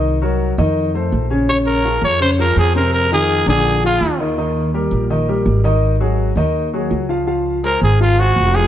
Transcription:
X:1
M:4/4
L:1/8
Q:1/4=166
K:Bbm
V:1 name="Trumpet"
z8 | d B2 d c B A B | B A2 A2 F2 z | z8 |
z8 | z2 B A F G2 A |]
V:2 name="Grand piano"
[E,Ee] [G,GB]2 [E,Ee]2 [=A,=Ac]2 [D,Dd] | [D,Dd]2 [F,FA]2 [D,Dd] [F,FA]2 [C,Cc]- | [C,Cc] [E,EF]2 [=D,=D=d]2 [F,FA]2 [E,Ee] | [E,Ee]2 [=G,=GB]2 [E,Ee] [G,GB]2 [E,Ee]- |
[E,Ee] [G,GA]2 [E,Ee]2 [G,GA]2 [F,Ff] | [F,Ff]2 [A,Ac]2 [F,Ff] [A,Ac]2 [F,Ff] |]
V:3 name="Upright bass" clef=bass
C,,3 F,,3 B,,,2- | B,,,3 F,,3 F,,2- | F,,3 B,,,3 E,,2- | E,,3 B,,,3 A,,,2- |
A,,,3 E,,3 D,,2- | D,,3 A,,,3 F,,,2 |]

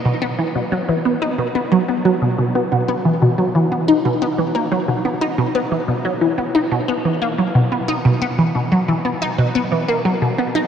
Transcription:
X:1
M:4/4
L:1/16
Q:1/4=90
K:B
V:1 name="Synth arpeggio sound" clef=bass
B,, B, E, B,, F, E, B, D B,, B, F, B, F, B,, B,, B, | B,, B, E, B,, F, E, B, D B,, B, E, A, F, B,, B, D | B,, B, E, B,, F, E, B, D B,, B, E, A, F, B,, B, D | B,, B, E, B,, F, E, B, D B,, B, E, A, F, B,, B, D |]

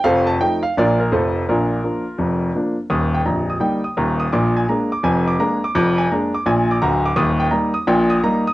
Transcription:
X:1
M:4/4
L:1/8
Q:"Swing" 1/4=169
K:Bb
V:1 name="Grand piano"
[Acf] a g f [FBd] B [FAc]2 | [DFB]6- [DFB] z | [K:Eb] e' g b e' g e' b e' | d' a b d' a d' b d' |
d' a b d' a d' b d' | e' g b e' g e' b e' |]
V:2 name="Grand piano" clef=bass
[F,,,F,,]2 [F,A,E]2 [B,,,B,,F,B,D]2 [F,,,F,,F,A,]2 | [B,,,B,,]2 [F,B,D]2 [F,,,F,,]2 [F,B,D]2 | [K:Eb] [E,,,E,,]2 [B,,,,B,,,]2 [G,B,E]2 [E,,,E,,]2 | [B,,,B,,]2 [A,B,D]2 [F,,,F,,]2 [A,B,D]2 |
[F,,,F,,]2 [A,B,D]2 [B,,,B,,]2 [D,,,D,,]2 | [E,,,E,,]2 [G,B,E]2 [B,,,B,,]2 [G,B,E]2 |]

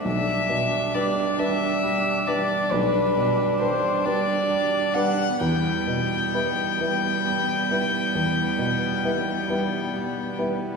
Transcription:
X:1
M:12/8
L:1/8
Q:3/8=45
K:G
V:1 name="Violin"
e2 d e2 d B2 c d2 f | g8- g3 z |]
V:2 name="Viola"
D12 | B,12 |]
V:3 name="Grand piano"
B,,, B,, [G,DB] [G,DB] G, [G,DB] B,,, B,, [G,DB] [G,DB] G, [G,DB] | E,, B,, [G,EB] [G,EB] G, [G,EB] E,, B,, [G,EB] [G,EB] G, [G,EB] |]
V:4 name="Cello" clef=bass
G,12 | G,12 |]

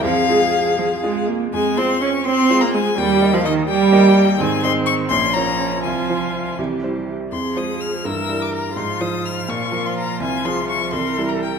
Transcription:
X:1
M:6/8
L:1/16
Q:3/8=83
K:Fm
V:1 name="Violin"
f8- f2 z2 | a2 c'2 d'2 c'3 b a2 | g3 f e2 g6 | a2 c'2 d'2 c'2 b4 |
a6 z6 | c'2 e'2 f'2 =e'3 =d' b2 | c'2 e'2 f'2 d'3 c' b2 | a2 c'2 d'2 c'3 b g2 |]
V:2 name="Grand piano"
F,,2 [A,FA]6 [A,FA]4 | F,,2 [A,Fc]6 [A,Fc]4 | E,,2 [B,Be]6 [B,Be]4 | A,,2 [CAe]4 B,,,2 [B,Fd]4 |
C,,2 [F,Fc]4 C,,2 [G,=Ec]4 | F,,2 [A,Fc]4 G,,2 [G,=EB]4 | A,,2 [F,Fc]4 B,,2 [F,FB]4 | C,,2 [F,FA]4 C,,2 [G,=EB]4 |]
V:3 name="Viola"
A8- A2 z2 | A,2 C2 D2 C3 B, A,2 | G,3 F, E,2 G,6 | C6 D6 |
F6 G4 z2 | A6 B6 | F12- | F6 B6 |]
V:4 name="Cello" clef=bass
F,6 F,2 A,2 B,2 | A,2 C2 D2 C3 B, A,2 | G,3 F, E,2 G,6 | E,6 F,6- |
F,6 =E,4 z2 | F,6 =E,6 | F,12- | F,6 =E,6 |]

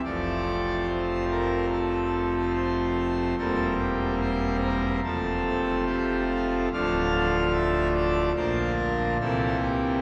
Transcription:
X:1
M:4/4
L:1/8
Q:1/4=72
K:F
V:1 name="Pipe organ"
d2 c B A2 c2 | A G c B A2 G F | f2 e d c B A G |]
V:2 name="Pipe organ" clef=bass
[F,,,F,,F,A,C]8 | [E,,,E,,G,B,C]4 [F,,,F,,F,A,C]4 | [D,,,D,,F,A,D]4 [B,,,B,,F,B,D]2 [C,,C,E,B,C]2 |]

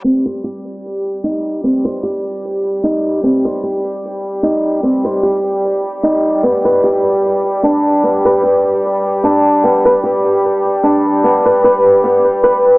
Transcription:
X:1
M:4/4
L:1/16
Q:"Swing 16ths" 1/4=75
K:Cm
V:1 name="Nylon-string guitar"
C c G4 E2 C c G4 E2 | C c G4 E2 C c G4 E2 | =B, =B G4 D2 B, B G4 D2 | =B, =B G4 D2 B, B B z B, z B z |]
V:2 name="Violin section"
[G,G]16- | [G,G]16- | [G,G]16- | [G,G]16 |]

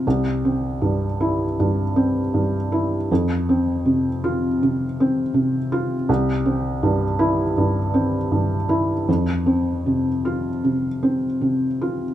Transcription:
X:1
M:4/4
L:1/8
Q:1/4=79
K:Cmix
V:1 name="Felt piano"
z3 E2 z3 | z3 F2 z3 | z3 E2 z3 | z3 F2 z3 |]
V:2 name="Felt piano" clef=bass
C,, C G,,2 G,, C G,, E | F,, C C,2 C, C C, F | C,, C G,,2 G,, C G,, E | F,, C C,2 C, C C, F |]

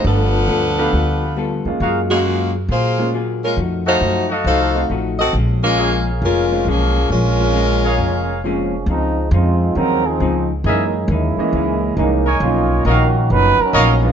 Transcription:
X:1
M:4/4
L:1/8
Q:"Swing" 1/4=136
K:Bbm
V:1 name="Trumpet section"
z3 [=G=A=Bf]3 z2 | [GABf] z6 z | z [G=Aef] z [GAef]3 z2 | z2 [ABdf]3 z3 |
z3 [ABdf]3 z2 | z8 | [ABe_f] z6 [Bdea]- | [Bdea]2 [^A^c^d^e] z3 [Acde] z |]
V:2 name="Saxophone section"
[F,=B,=D=A]6- [F,B,DA] z | z [D,A,B,G]2 z [B,FAc]2 z [A,DFB] | z [=A,EGc]2 z [E=Acf]2 z [CGAe] | z [A,B,DF]2 z [A,DFB]2 [F,B,DA]2 |
[A,DFB]6 z2 | z8 | z8 | z8 |]
V:3 name="Trombone section"
z8 | z8 | z8 | z8 |
z6 [F,A,B,D]2 | [F,A,CE]2 [A,CEF]2 [G,CEB] [F,CEA]2 z | [A,B,DE]2 [A,B,D_F]4 [A,B,DE]2 | [^A,^C^D^E]2 [^D,A,C^F]2 [^F,CD=B] [F,CD^A]2 z |]
V:4 name="Grand piano"
[=A,_C=DF]2 z [A,=B,DF] z3 [_A,_B,_DF]- | [A,B,DF]2 z3 [A,B,DF] z2 | z4 z [=A,CEG] z2 | z4 z [A,CDF] z2 |
z [A,CDF] z4 [A,CDF] z | z4 [F,A,CDE] z3 | [_F,A,B,DE] z2 [F,A,B,De]3 [F,A,B,DE] z | z6 z [A,=B,^C=D^E] |]
V:5 name="Hollow-body jazz guitar"
[=G,=B,F=A] z [G,B,FA] z [G,B,FA] z [G,B,FA] z | [G,B,FA] z [G,B,FA] z [G,B,FA] z [G,B,FA] z | [F,=A,EG] z [F,A,EG] z [F,A,EG] z [F,A,EG] z | [B,,F,A,D] z [B,,F,A,D] z [B,,F,A,D] z [B,,F,A,D] z |
[B,,F,A,D] z [B,,F,A,D] z [B,,F,A,D] z [B,,F,A,D] z | [D,F,CE] z [D,F,CE] z [D,F,CE] z [D,F,CE] z | [G,,_F,B,E] z [G,,F,B,E] z [G,,F,B,E] z [G,,F,B,E] z | [=B,,^E,^A,^D] z [B,,E,A,D] z [B,,E,A,D] z [B,,E,A,D] z |]
V:6 name="Upright bass" clef=bass
=G,,,2 =D,,2 D,,3 =E,, | G,,4 B,,4 | F,,2 G,,2 C,,2 =A,,,2 | B,,,4 F,,,2 _C,,2 |
B,,,4 F,,,4 | D,,2 F,,2 E,,2 D,,2 | G,,2 E,, z D,,2 C,,2 | =B,,,2 ^A,,,2 ^F,,, z A,,,2 |]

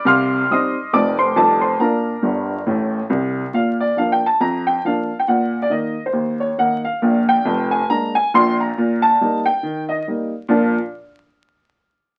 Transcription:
X:1
M:4/4
L:1/16
Q:"Swing" 1/4=138
K:Bb
V:1 name="Upright piano"
[fc'f']4 [ec'e']4 [dd']2 [cc']2 [Aa]2 [cc']2 | [Bfb]12- [Bfb]2 z2 | f2 d2 (3f2 g2 a2 b2 g2 f3 g | _g3 d e3 c3 _d2 g2 f2- |
f2 g4 _a2 b2 a2 c'2 b2- | b2 a4 g4 e2 z4 | [B,,F,DFB]2 z12 z2 |]
V:2 name="Upright piano" clef=bass
[C,,C,]4 [G,CE]4 [F,,,F,,A,CE]4 [F,,,F,,G,CE]4 | [B,,D]4 [G,,,G,,]4 [A,,,A,,]4 [C,,C,]4 | B,,4 [F,B,D]4 F,,4 [F,B,D]4 | B,,4 [E,B,E]4 E,,4 [E,B,E]4 |
[B,,,B,,]4 [F,,,F,,]4 [_A,B,D]4 [B,,,B,,]4 | B,,4 [G,B,E]4 E,4 [G,B,E]4 | z16 |]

